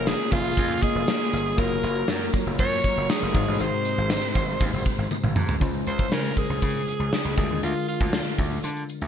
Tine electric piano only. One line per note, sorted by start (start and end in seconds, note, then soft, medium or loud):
0.00 0.79 A#3 medium
0.00 0.80 F4 medium
0.00 0.80 G#4 medium
0.00 0.81 C#5 medium
0.82 1.56 A#3 medium
0.82 1.56 F4 soft
0.82 1.58 G#4 soft
0.82 1.59 D#5 medium
1.57 3.30 A#3 medium
1.57 3.31 F4 medium
1.57 3.31 F#4 medium
1.57 3.32 C#5 medium
3.34 4.06 G#2 medium
3.34 5.32 G#3 medium
3.34 5.32 D#4 medium
3.34 5.33 F#4 medium
3.34 5.33 C5 medium
5.60 6.33 C#3 medium
5.60 7.34 G#3 medium
5.60 7.34 C#4 medium
5.60 7.34 F4 medium
5.60 7.35 C5 medium
7.36 8.09 D3 medium
7.36 9.08 G#3 medium
7.36 9.08 D4 medium
7.36 9.08 F4 medium
7.36 9.08 A#4 medium